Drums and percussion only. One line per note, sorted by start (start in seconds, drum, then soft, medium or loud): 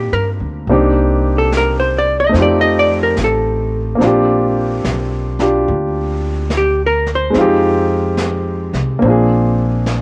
0.69 brush sweep soft
1.52 snare medium
1.52 hi-hat pedal medium
2.34 brush sweep soft
2.34 snare soft
3.17 snare soft
3.17 hi-hat pedal medium
4.01 brush sweep soft
4.01 snare soft
4.85 snare medium
4.85 hi-hat pedal medium
5.39 snare soft
5.67 brush sweep soft
6.50 snare medium
6.50 hi-hat pedal medium
7.06 snare soft
7.34 brush sweep soft
7.34 snare soft
8.17 snare medium
8.17 hi-hat pedal medium
8.74 snare soft
9.01 brush sweep soft
9.86 snare medium
9.86 hi-hat pedal soft